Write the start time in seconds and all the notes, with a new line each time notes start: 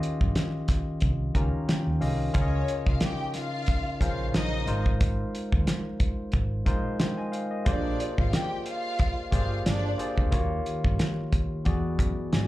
Already playing: D#3 C#4 F4 G4 D#5
0.03 closed hi-hat
0.21 G2, kick
0.35 snare, closed hi-hat
0.68 kick, snare, closed hi-hat
1.00 C2, kick, closed hi-hat
1.34 C#2 D#3 C#4 F4 G4 A#4 A#5, kick, closed hi-hat
1.68 G5, snare, closed hi-hat
1.87 D#2
2.00 C2 D#3 C#4 F4 G4 D#5 F5, open hi-hat
2.32 C#2 C#3 C#4 F4 A#4 C#5, kick, closed hi-hat
2.41 D#5
2.68 closed hi-hat
2.87 C2 F4 F5, kick
3.00 D#4 G4 G5, snare, closed hi-hat
3.34 F4 F5, snare, closed hi-hat
3.66 kick, closed hi-hat
4.00 A#1 C#3 C#4 F4 A#4 C5 F5, kick, closed hi-hat
4.34 A#1 D#4 D#5, snare, closed hi-hat
4.66 G#1 G#3 D#4 F4 A#4 C5, closed hi-hat
4.86 kick
5.01 kick, closed hi-hat
5.35 closed hi-hat
5.52 D#2, kick
5.67 snare, closed hi-hat
6.00 kick, closed hi-hat
6.32 G#1, kick, closed hi-hat
6.65 A#1 G#3 D#4 F4 A#4 C5, kick, closed hi-hat
7.00 G5 C6, snare, closed hi-hat
7.18 D#5 G#5
7.32 C5 F5, closed hi-hat
7.51 A#4 D#5
7.65 A#1 A#3 D4 F4 G4 G#4 C5 D5, kick, closed hi-hat
8.00 closed hi-hat
8.18 G#1 F4 F5, kick
8.32 G4 G5, snare, closed hi-hat
8.66 F4 F5, closed hi-hat
8.99 kick, closed hi-hat
9.31 G1 A#3 F4 G4 G#4 C5 D5 F5, kick, closed hi-hat
9.66 G1 D4 D5, snare, closed hi-hat
9.98 A#3 F4 G4 G#4 C5 D5, closed hi-hat
10.18 D2, kick
10.31 D#2 D#3 A#3 F4 F#4 C#5, kick, closed hi-hat
10.39 G4
10.66 G4, closed hi-hat
10.84 G2, kick
10.99 snare, closed hi-hat
11.32 kick, closed hi-hat
11.64 E2 E3 B3 F#4 G#4 D5, kick, closed hi-hat
11.99 F#2, kick, closed hi-hat
12.33 G#2 D5 G#5, snare, closed hi-hat